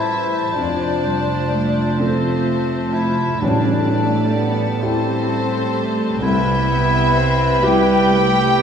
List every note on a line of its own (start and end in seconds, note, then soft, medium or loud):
0.00 0.53 A1 soft
0.00 0.54 A1 soft
0.00 0.53 E3 soft
0.00 0.53 G3 soft
0.00 0.55 E4 medium
0.00 0.53 G4 soft
0.00 0.54 A4 soft
0.00 3.38 C5 soft
0.00 0.57 E5 medium
0.00 3.38 A5 soft
0.55 3.38 F1 medium
0.55 3.38 F2 soft
0.55 1.04 F3 soft
0.55 3.38 F3 medium
0.55 2.00 D4 medium
0.55 1.96 D5 medium
1.05 1.52 G3 soft
1.52 1.98 A3 soft
1.98 3.38 F3 soft
1.98 3.39 A3 medium
1.98 2.95 C4 medium
1.98 3.38 A4 soft
1.98 2.93 C5 medium
2.94 3.42 E4 medium
2.94 3.41 E5 medium
3.40 6.18 A1 medium
3.40 6.19 A1 medium
3.40 4.78 A2 medium
3.40 3.89 G3 medium
3.40 8.62 G3 medium
3.40 4.54 D4 medium
3.40 6.19 A4 medium
3.40 4.82 D5 medium
3.40 6.18 A5 soft
3.89 4.36 A3 medium
4.35 4.82 B3 medium
4.82 6.22 A3 medium
4.82 6.19 C4 medium
4.82 6.19 E4 soft
4.82 6.19 G4 soft
4.82 6.23 C5 medium
6.22 8.62 C2 medium
6.22 6.68 G3 medium
6.22 7.65 E4 medium
6.22 8.62 B4 medium
6.22 7.61 E5 medium
6.22 8.62 G5 medium
6.69 7.16 B3 medium
7.16 7.63 C4 medium
7.62 8.11 G3 medium
7.62 8.62 E4 soft
7.62 8.62 G4 soft
7.62 8.62 G4 medium
7.62 8.62 G5 medium
8.10 8.59 A3 medium
8.58 8.62 B3 medium